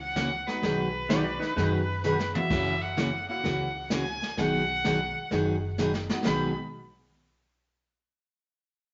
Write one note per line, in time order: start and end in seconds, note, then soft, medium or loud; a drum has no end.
0.00 0.44 C#2 medium
0.00 0.48 F#5 loud
0.16 0.28 C#3 medium
0.16 0.28 E3 medium
0.16 0.29 A#3 medium
0.16 0.29 C#4 medium
0.16 0.29 F#4 medium
0.16 kick soft
0.16 snare medium
0.16 hi-hat pedal medium
0.47 0.61 F#3 medium
0.47 0.61 G#3 medium
0.47 0.62 B3 medium
0.47 0.62 D#4 medium
0.47 0.62 F#4 medium
0.47 2.03 B4 medium
0.47 snare soft
0.62 1.37 B1 medium
0.62 0.86 B2 medium
0.62 0.86 D#3 medium
0.62 0.86 F#3 medium
0.62 0.86 B3 medium
0.62 0.86 D#4 medium
0.62 0.87 G#4 medium
0.62 brush sweep soft
0.62 kick soft
0.62 snare soft
1.09 1.22 B2 medium
1.09 1.22 D#3 medium
1.09 1.22 F#3 medium
1.09 1.22 B3 medium
1.09 1.22 D#4 medium
1.09 1.23 F#4 medium
1.09 1.22 G#4 medium
1.09 1.23 D5 medium
1.09 kick soft
1.09 snare medium
1.09 hi-hat pedal medium
1.24 1.39 F#4 medium
1.24 1.40 D5 medium
1.40 1.55 D#4 medium
1.40 1.55 B4 medium
1.40 snare soft
1.56 2.31 F#2 medium
1.56 1.80 B2 medium
1.56 1.80 D#3 medium
1.56 1.80 F#3 medium
1.56 1.80 B3 medium
1.56 1.71 D#4 medium
1.56 1.80 D#4 medium
1.56 1.80 G#4 medium
1.56 1.72 B4 medium
1.56 brush sweep soft
1.56 kick soft
1.56 snare soft
1.73 2.41 B4 medium
2.04 2.16 B2 medium
2.04 2.16 D#3 medium
2.04 2.16 F#3 medium
2.04 2.16 B3 medium
2.04 2.16 D#4 medium
2.04 2.16 G#4 medium
2.04 2.33 B4 medium
2.04 hi-hat pedal medium
2.19 snare medium
2.35 2.49 F#3 medium
2.35 2.49 A#3 medium
2.35 2.49 C#4 medium
2.35 2.49 E4 medium
2.35 2.50 F#4 medium
2.35 2.83 E5 medium
2.35 mid tom medium
2.50 3.25 F#1 medium
2.50 2.73 C#3 medium
2.50 2.73 E3 medium
2.50 2.74 A#3 medium
2.50 2.74 C#4 medium
2.50 2.74 F#4 medium
2.50 brush sweep medium
2.50 kick medium
2.50 snare soft
2.50 crash medium
2.82 3.28 F#5 loud
2.97 3.09 C#3 medium
2.97 3.09 E3 medium
2.97 3.09 A#3 medium
2.97 3.09 C#4 medium
2.97 3.10 F#4 medium
2.97 kick soft
2.97 snare medium
2.97 hi-hat pedal medium
3.28 3.42 A#3 medium
3.28 3.43 C#4 medium
3.28 3.43 E4 medium
3.28 3.43 F#4 medium
3.28 3.87 F#5 loud
3.44 4.19 C#2 medium
3.44 3.67 C#3 medium
3.44 3.67 E3 medium
3.44 3.67 A#3 medium
3.44 3.67 C#4 medium
3.44 3.67 F#4 medium
3.44 brush sweep medium
3.44 kick soft
3.44 snare soft
3.90 4.03 C#3 medium
3.90 4.03 E3 medium
3.90 4.04 A#3 medium
3.90 4.04 C#4 medium
3.90 4.04 F#4 medium
3.90 4.40 G#5 loud
3.90 kick soft
3.90 snare medium
3.90 hi-hat pedal medium
4.22 snare soft
4.37 5.12 B1 medium
4.37 4.61 B2 medium
4.37 4.61 D#3 medium
4.37 4.61 F#3 medium
4.37 4.61 B3 medium
4.37 4.62 D#4 medium
4.37 4.62 G#4 medium
4.37 5.79 F#5 loud
4.37 brush sweep soft
4.37 kick soft
4.37 snare soft
4.84 4.97 B2 medium
4.84 4.97 D#3 medium
4.84 4.97 F#3 medium
4.84 4.97 B3 medium
4.84 4.97 D#4 medium
4.84 4.97 G#4 medium
4.84 kick soft
4.84 snare medium
4.84 hi-hat pedal medium
5.31 6.06 F#1 medium
5.31 5.54 B2 medium
5.31 5.54 D#3 medium
5.31 5.55 F#3 medium
5.31 5.55 B3 medium
5.31 5.55 D#4 medium
5.31 5.55 G#4 medium
5.31 brush sweep soft
5.31 kick soft
5.31 snare soft
5.78 5.90 B2 medium
5.78 5.91 D#3 medium
5.78 5.91 F#3 medium
5.78 5.91 B3 medium
5.78 5.91 D#4 medium
5.78 5.91 G#4 medium
5.78 snare soft
5.78 hi-hat pedal medium
5.94 snare medium
6.09 6.24 G#3 medium
6.09 6.24 B3 medium
6.09 6.24 D#4 medium
6.09 6.25 F#4 medium
6.09 snare medium
6.24 6.54 B1 medium
6.24 6.50 B2 medium
6.24 6.50 D#3 medium
6.24 6.50 F#3 medium
6.24 6.54 G#3 medium
6.24 6.51 B3 medium
6.24 6.54 B3 medium
6.24 6.51 D#4 medium
6.24 6.54 D#4 medium
6.24 6.54 F#4 medium
6.24 6.51 G#4 medium
6.24 6.54 B5 medium
6.24 snare medium